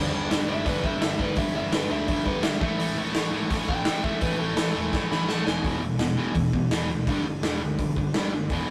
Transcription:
Already playing: overdriven electric guitar G2 D3 G3
0.12 picked electric bass G1, overdriven electric guitar G2 D3 G3
0.30 picked electric bass G1, overdriven electric guitar G2 D3 G3, snare, open hi-hat
0.46 picked electric bass G1, overdriven electric guitar G2 D3 G3, lead electric guitar E5
0.66 picked electric bass G1, overdriven electric guitar G2 D3 G3, lead electric guitar B4, kick, open hi-hat
0.83 picked electric bass G1, overdriven electric guitar G2 D3 G3, lead electric guitar E5, kick
1.01 picked electric bass G1, overdriven electric guitar G2 D3 G3, lead electric guitar E5, snare, open hi-hat
1.18 picked electric bass G1, overdriven electric guitar G2 D3 G3, lead electric guitar B4, kick
1.36 picked electric bass G1, overdriven electric guitar G2 D3 G3, lead electric guitar E5, kick, open hi-hat
1.53 picked electric bass G1, overdriven electric guitar G2 D3 G3, lead electric guitar E5
1.71 picked electric bass G1, overdriven electric guitar G2 D3 G3, lead electric guitar B4, snare, open hi-hat
1.89 picked electric bass D2, overdriven electric guitar G2 D3 G3, lead electric guitar E5
2.07 picked electric bass G1, overdriven electric guitar G2 D3 G3, lead electric guitar E5, kick, open hi-hat
2.24 picked electric bass G1, overdriven electric guitar G2 D3 G3, lead electric guitar B4, kick
2.42 picked electric bass G1, overdriven electric guitar G2 D3 G3, lead electric guitar E5, snare, open hi-hat
2.61 picked electric bass A1, overdriven electric guitar A2 E3 A3, lead electric guitar E5, kick
2.78 picked electric bass A1, overdriven electric guitar A2 E3 A3, open hi-hat
2.96 picked electric bass A1, overdriven electric guitar A2 E3 A3
3.14 picked electric bass A1, overdriven electric guitar A2 E3 A3, snare, open hi-hat
3.32 picked electric bass A1, overdriven electric guitar A2 E3 A3
3.50 picked electric bass A1, overdriven electric guitar A2 E3 A3, kick, open hi-hat
3.68 picked electric bass A1, overdriven electric guitar A2 E3 A3, lead electric guitar G5, kick
3.84 picked electric bass A1, overdriven electric guitar A2 E3, snare, open hi-hat
3.88 overdriven electric guitar A3
4.03 picked electric bass A1, overdriven electric guitar A2 E3 A3, lead electric guitar E5, kick
4.21 picked electric bass A1, overdriven electric guitar A2 E3 A3, lead electric guitar B4, kick, open hi-hat
4.38 picked electric bass A1, overdriven electric guitar A2 E3 A3, lead electric guitar A4
4.56 picked electric bass A1, overdriven electric guitar A2 E3 A3, snare, open hi-hat
4.75 picked electric bass E1, overdriven electric guitar A2 E3 A3
4.93 picked electric bass A1, overdriven electric guitar A2 E3 A3, kick, snare
5.11 picked electric bass A1, overdriven electric guitar A2 E3 A3, lead electric guitar B5, snare
5.27 picked electric bass A1, overdriven electric guitar A2 E3 A3, lead electric guitar A5, snare
5.45 picked electric bass E1, overdriven electric guitar E2 B2 E3, lead electric guitar G#5, snare
5.64 picked electric bass E1, overdriven electric guitar E2 B2 E3, kick, open hi-hat
5.80 picked electric bass E1, overdriven electric guitar E2 B2
5.97 picked electric bass E1, overdriven electric guitar E2 B2, snare, open hi-hat
6.16 picked electric bass A1, overdriven electric guitar E2 B2 E3
6.34 picked electric bass E1, overdriven electric guitar E2 B2, kick, open hi-hat
6.53 picked electric bass B1, overdriven electric guitar E2 B2, kick
6.70 picked electric bass E1, overdriven electric guitar E2 B2 E3, snare, open hi-hat
6.88 picked electric bass D2, overdriven electric guitar E2 B2
7.07 picked electric bass G1, overdriven electric guitar G2 D3 G3, kick, open hi-hat
7.25 picked electric bass G1, overdriven electric guitar G2 D3
7.42 picked electric bass E1, overdriven electric guitar G2 D3 G3, snare, open hi-hat
7.62 picked electric bass D2, overdriven electric guitar G2 D3
7.78 picked electric bass B1, overdriven electric guitar G2 D3, kick, open hi-hat
7.96 picked electric bass G1, overdriven electric guitar G2 D3, kick
8.13 picked electric bass G1, overdriven electric guitar G2 D3 G3, snare, open hi-hat
8.33 overdriven electric guitar G2 D3
8.49 picked electric bass E1, overdriven electric guitar E2 B2 E3, kick, open hi-hat

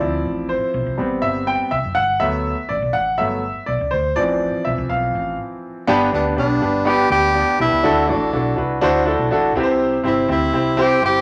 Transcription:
Already playing: grand piano D5
0.00 fingered electric bass D2, grand piano F3 C4 E4
0.25 fingered electric bass A1
0.49 grand piano C5
0.74 fingered electric bass B1
0.86 fingered electric bass C2
0.98 fingered electric bass A1, grand piano G3 B3 C4
1.22 fingered electric bass G1, grand piano E5
1.47 grand piano G5
1.71 fingered electric bass C2, grand piano E5
1.84 fingered electric bass F#1
1.95 fingered electric bass G1, grand piano F#5
2.20 fingered electric bass D2, grand piano F#3 A3 B3 E5
2.69 fingered electric bass A1, grand piano D5
2.82 fingered electric bass B1
2.93 fingered electric bass A1, grand piano F#5
3.18 fingered electric bass G1, grand piano F#3 A3 B3 E5
3.66 fingered electric bass B1, grand piano D5
3.81 fingered electric bass C#2
3.91 fingered electric bass D2, grand piano C5
4.16 fingered electric bass A1, grand piano E3 F3 C4 D5
4.65 fingered electric bass B1, grand piano E5
4.78 fingered electric bass C2
4.89 fingered electric bass B1, grand piano F5
5.15 fingered electric bass A1
5.87 fingered electric bass G1, grand piano G2 B3 D4 G4 B4
6.12 fingered electric bass D2, grand piano B3 D4 G4 B4, tenor saxophone D4
6.36 fingered electric bass B1, grand piano B3 D4 G4 B4, tenor saxophone D4
6.61 fingered electric bass G1, grand piano B3 D4 G4 B4
6.85 grand piano B3 D4 G4 B4, tenor saxophone G4
7.10 fingered electric bass D2, grand piano B3 D4 G4 B4, tenor saxophone G4
7.34 grand piano B3 D4 G4 B4
7.59 fingered electric bass B1, grand piano B3 D4 G4 B4, tenor saxophone E4
7.72 fingered electric bass C#2
7.83 fingered electric bass D2, grand piano D3 D4 E4 F#4 A4
8.07 fingered electric bass A1, grand piano D4 E4 F#4 A4, tenor saxophone D4
8.32 fingered electric bass B1, grand piano D4 E4 F#4 A4
8.56 fingered electric bass C2, grand piano D4 E4 F#4 B4
8.81 fingered electric bass D2, grand piano D4 E4 F#4 C5
9.05 grand piano D4 E4 F#4 A4
9.19 fingered electric bass B1
9.31 fingered electric bass A1, grand piano D4 E4 F#4 A4
9.55 fingered electric bass C2, grand piano C3 C4 E4 G4 B4
9.63 grand piano C5
10.04 fingered electric bass G1, grand piano C4 E4 G4 C5, tenor saxophone E4
10.28 fingered electric bass D2, grand piano C4 E4 G4 C5, tenor saxophone E4
10.53 fingered electric bass C2, grand piano C4 E4 G4 C5
10.77 grand piano C4 E4 G4 C5, tenor saxophone G4
11.02 fingered electric bass G1, grand piano C4 E4 G4 C5, tenor saxophone G4

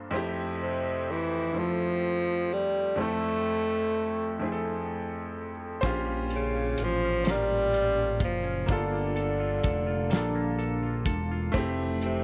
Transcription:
Already playing: grand piano G2 A#3 D4 F4 C5
0.11 grand piano F2 A3 C4
0.15 grand piano E4 G4
0.62 tenor saxophone C3
1.11 tenor saxophone E3
1.53 grand piano F2 A3 C4
1.58 tenor saxophone F3, grand piano E4 A4
2.53 tenor saxophone G3
2.96 grand piano F2 A3 C4
3.00 tenor saxophone A3, grand piano E4 A4
4.39 grand piano F2 A3 C4
4.44 grand piano E4 G#4
4.52 grand piano A4
5.81 analog synth bass A#1, clean electric guitar A#2, grand piano C#4 F4 C5, kick, closed hi-hat
5.87 grand piano G4
6.06 clean electric guitar G3
6.30 clean electric guitar F4, closed hi-hat
6.36 tenor saxophone C#3
6.56 clean electric guitar C#4
6.78 analog synth bass A1, clean electric guitar F4, closed hi-hat
6.84 tenor saxophone F3
7.04 clean electric guitar C#4
7.24 clean electric guitar A#2, grand piano C#4 F4 C5, snare, closed hi-hat
7.30 tenor saxophone G3, grand piano A#4
7.50 clean electric guitar G3
7.73 clean electric guitar F4, closed hi-hat
7.97 clean electric guitar C#4
8.20 analog synth bass F#1, tenor saxophone F3, clean electric guitar F4, kick, closed hi-hat
8.44 clean electric guitar C#4
8.66 analog synth bass G1, clean electric guitar G3, grand piano A#3 D4, kick, closed hi-hat
8.70 tenor saxophone D3, grand piano F4 A4
8.92 clean electric guitar A#3
9.16 clean electric guitar A4, closed hi-hat
9.40 clean electric guitar F4
9.64 analog synth bass F1, clean electric guitar A4, kick, closed hi-hat
9.87 clean electric guitar F4
10.10 analog synth bass A#1, clean electric guitar G3, grand piano A#3 D4, snare, closed hi-hat
10.14 grand piano F4 A4
10.35 clean electric guitar A#3
10.59 clean electric guitar A4, closed hi-hat
10.83 clean electric guitar F4
11.06 analog synth bass E1, clean electric guitar A4, kick, closed hi-hat
11.31 clean electric guitar F4
11.52 analog synth bass F1, clean electric guitar F2, grand piano A3 C4, kick, closed hi-hat
11.56 grand piano E4 G4
11.79 clean electric guitar E3
12.02 tenor saxophone C3, clean electric guitar C4, closed hi-hat

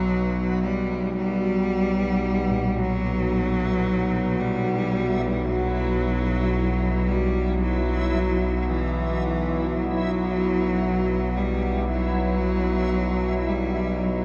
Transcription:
Already playing: synth drone B1, kettle gongs B2, cello F#3, analog synth pad F#4 B4 F#5, synth texture B4
0.63 cello G3
1.16 cello G3, synth texture E4
2.51 kettle gongs A#2
2.78 cello F#3
4.39 cello G3
5.46 cello F#3
7.07 cello G3
7.14 kettle gongs F#4
7.61 cello F#3
8.62 cello F#3
8.69 cello E3
9.75 cello F#3
9.82 cello G3
9.90 cello F#3
11.37 cello G3
11.90 cello F#3
13.49 cello G3
14.03 cello F#3

